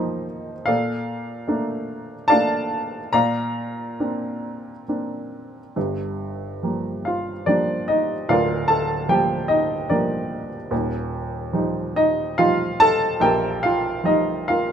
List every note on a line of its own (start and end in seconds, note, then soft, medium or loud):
0.00 0.64 F2 medium
0.00 0.71 F3 soft
0.00 0.70 A#3 soft
0.00 0.70 D#4 medium
0.00 0.71 A#4 medium
0.00 0.71 C5 medium
0.00 0.71 D#5 medium
0.00 0.66 F5 medium
0.66 3.09 A#2 medium
0.66 2.26 A4 medium
0.66 2.26 D5 medium
0.66 2.28 F5 medium
1.48 2.13 A3 medium
1.48 2.14 A#3 soft
1.48 2.14 D4 medium
2.28 2.97 A3 soft
2.28 2.97 A#3 soft
2.28 3.09 D5 medium
2.28 3.10 F5 medium
2.28 3.08 A5 loud
2.32 2.98 D4 medium
3.13 5.72 A#2 medium
3.13 4.84 D5 medium
3.13 4.84 F5 medium
3.13 4.83 A#5 medium
4.00 4.71 A#3 soft
4.00 4.71 C4 soft
4.00 4.71 D4 soft
4.88 5.59 A#3 soft
4.88 5.59 C4 soft
4.88 5.59 D4 soft
5.76 8.26 G1 soft
5.76 8.25 G2 medium
6.63 7.31 F3 soft
6.63 7.31 G3 soft
6.63 7.31 A#3 soft
7.05 7.46 F4 soft
7.05 7.49 F5 medium
7.46 8.12 F3 soft
7.46 8.13 G3 soft
7.46 8.13 A#3 soft
7.46 7.86 D4 medium
7.46 7.89 D5 medium
7.88 8.27 D#4 medium
7.88 8.26 D#5 medium
8.29 10.68 D1 medium
8.29 10.68 D2 medium
8.29 8.68 F4 medium
8.29 8.68 A#4 medium
8.29 8.68 D5 medium
8.29 8.67 F5 medium
8.68 9.07 A4 medium
8.68 9.10 A5 medium
9.08 9.73 F3 soft
9.08 9.74 G3 soft
9.08 9.74 A#3 medium
9.08 9.48 G4 medium
9.08 9.47 G5 medium
9.48 9.88 D#4 medium
9.48 9.91 D#5 medium
9.90 10.56 F3 soft
9.90 10.56 G3 soft
9.90 10.56 A#3 medium
9.90 10.47 D4 soft
9.90 10.47 A#4 soft
9.90 10.47 D5 medium
10.71 13.17 D#1 medium
10.71 13.17 D#2 medium
11.53 12.21 F3 soft
11.53 12.21 G3 soft
11.53 11.95 D#4 medium
11.96 12.36 D#4 medium
11.96 12.40 D#5 medium
12.38 13.05 F3 soft
12.38 13.05 G3 soft
12.38 13.06 D#4 medium
12.38 12.78 F4 medium
12.38 12.77 F5 medium
12.80 13.20 A4 medium
12.80 13.23 A5 loud
13.20 14.72 A#1 medium
13.20 13.61 G4 medium
13.20 13.61 A#4 medium
13.20 13.64 G5 medium
13.63 14.04 F4 medium
13.63 14.07 F5 medium
14.04 14.72 F3 soft
14.04 14.72 G3 soft
14.04 14.06 D#4 soft
14.04 14.50 D#5 medium
14.08 14.47 D#4 medium
14.48 14.72 F4 soft
14.48 14.72 A#4 soft
14.48 14.72 F5 medium